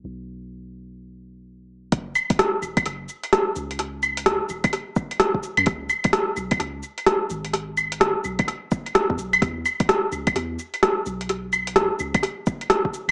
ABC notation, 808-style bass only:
X:1
M:4/4
L:1/16
Q:"Swing 16ths" 1/4=128
K:C#m
V:1 name="808-style bass" clef=bass
B,,,16 | F,,,2 z4 E,,,2 F,,,2 z4 C,,2- | C,,4- C,, z E,,,2 z6 z F,, | C,,2 z4 B,,,2 C,,2 z4 G,,,2- |
G,,,4- G,,, z B,,,2 z4 z E,, B,,,2 | E,,2 z4 C,,2 E,,2 z4 B,,,2- | B,,,4- B,,, z C,,2 z6 z E,,, |]